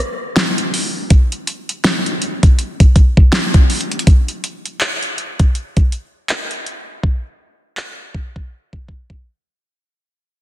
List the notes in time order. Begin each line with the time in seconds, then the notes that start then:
0.36 snare, closed hi-hat
0.58 closed hi-hat
0.74 open hi-hat
1.10 kick, closed hi-hat
1.32 closed hi-hat
1.47 closed hi-hat
1.69 closed hi-hat
1.84 snare, closed hi-hat
2.06 closed hi-hat
2.22 closed hi-hat
2.43 kick, closed hi-hat
2.59 closed hi-hat
2.80 kick, closed hi-hat
2.96 kick, closed hi-hat
3.17 kick
3.32 snare, closed hi-hat
3.54 kick, closed hi-hat
3.70 closed hi-hat, open hi-hat
3.81 closed hi-hat
3.91 closed hi-hat
3.99 closed hi-hat
4.07 kick, closed hi-hat
4.28 closed hi-hat
4.44 closed hi-hat
4.66 closed hi-hat
4.81 clap, closed hi-hat
5.03 closed hi-hat
5.18 closed hi-hat
5.39 kick, closed hi-hat
5.55 closed hi-hat
5.77 kick, closed hi-hat
5.92 closed hi-hat
6.29 clap, closed hi-hat
6.51 closed hi-hat
6.66 closed hi-hat
7.03 kick
7.77 clap
8.15 kick
8.36 kick
8.73 kick
8.88 kick
9.10 kick